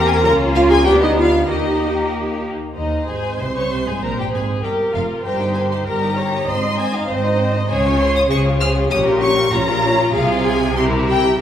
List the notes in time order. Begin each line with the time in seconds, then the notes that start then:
Already playing: E2 A#3 C4 G4 A#4
0.06 G#5
0.16 A#5
0.24 C#2 A#3 C#4 F4 A#4 A#5
0.55 F4 F5
0.69 G#4 G#5
0.85 D2 B3 D4 G4 G5
1.01 D#4 D#5
1.17 F4 F5
1.47 D#2 A#3 D#4 G4 D#5
2.75 D#2 D#4 C5 D#5
3.07 G#1 G#2 G#4 G#5
3.39 C2 C3 C5 C6
3.54 C#3 C#5 C#6
3.70 C2 C3 C5 C6
3.86 G#2 G#4 G#5
4.02 A#1 A#2 A#4 A#5
4.17 G2 G4 G5
4.32 G#1 G#2 G#4 G#5
4.63 G1 G2 G4 A#4 G5
4.93 F1 F2 F4 F5
5.24 G1 G2 G4 A#4 C5 G5
5.42 D#4 G4
5.54 G4 A#4 G#5
5.71 D#4 G4 C6
5.85 G1 G2 G4 A#4 A#5
6.03 D#4 G4
6.16 G4 A#4 C#5
6.33 D#4 G4
6.46 G#1 G#2 C4 C5 D#5 C6
6.63 D#4 D#5
6.77 C4 C5 G#5
6.93 D#4 D#5 F5
7.07 G#1 G#2 C4 C5 D#5
7.23 D#4 D#5
7.38 C4 C5
7.53 D#4 D#5
7.68 C#2 C#3 G#4 C5 C#5 G#5
7.85 F4 C#5
7.99 G#4 C5 C6
8.14 F4 C#5 D#6
8.28 C#2 C#3 G#4 C5 C#6
8.45 F4 C#5
8.60 G#4 C5 F6
8.75 F4 C#5
8.90 A#1 A#2 C#4 G4 C#5 D#6
9.06 F4 A#4
9.21 C#4 C#5 C#6
9.37 F4 A#4
9.52 A#1 A#2 C#4 F4 C#5 A#5
9.69 F4 A#4
9.84 C#4 C#5
10.00 F4 A#4
10.13 C2 C3 F4 G#4 F5
10.45 G#5
10.76 E4 G4 A#4 C6
11.08 G5